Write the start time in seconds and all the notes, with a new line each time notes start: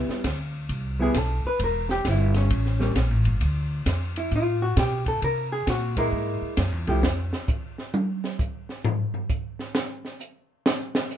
Already playing: G3 B3 E4
0.09 muted upright bass stroke, snare
0.24 D2, kick, snare, hi-hat pedal, ride
0.69 C2, kick, ride
0.99 G3 B3 E4 G#4
1.14 B1, kick, snare, hi-hat pedal, ride
1.19 A4
1.45 B4, muted upright bass stroke
1.59 E1, kick, ride
1.64 A#4
1.89 G4, snare
2.05 G1, kick, snare, hi-hat pedal, ride
2.09 E4
2.34 C#4, snare, ride
2.50 A1, kick, ride
2.66 snare
2.80 G3 A#3 C#4, snare
2.95 A#1, kick, snare, hi-hat pedal, ride
3.10 A1
3.25 G1, ride
3.41 D2, kick, ride
3.86 F2, kick, snare, hi-hat pedal, ride
4.16 E4, ride
4.31 A2, kick, ride
4.36 F4
4.62 F#4
4.77 B2 G4, snare, hi-hat pedal, ride
5.06 A4, kick, ride
5.22 C3 A#4, kick, ride
5.52 G#4
5.67 A#2 F#4, kick, snare, hi-hat pedal, ride
5.97 G#3 A#3 E4 A#4, kick, ride
6.12 G#2, kick
6.42 muted upright bass stroke
6.57 F#2, kick, snare, hi-hat pedal, ride
6.72 E2
6.87 C2 F3 A3 E4 G4, ride
7.03 F2, snare
7.33 snare
7.48 kick, hi-hat pedal
7.78 snare
7.94 high tom
8.24 snare
8.39 kick, hi-hat pedal
8.69 snare
8.84 floor tom
9.14 floor tom
9.29 kick, hi-hat pedal
9.59 snare
9.75 snare
10.05 snare
10.20 hi-hat pedal
10.66 snare
10.95 snare
11.11 hi-hat pedal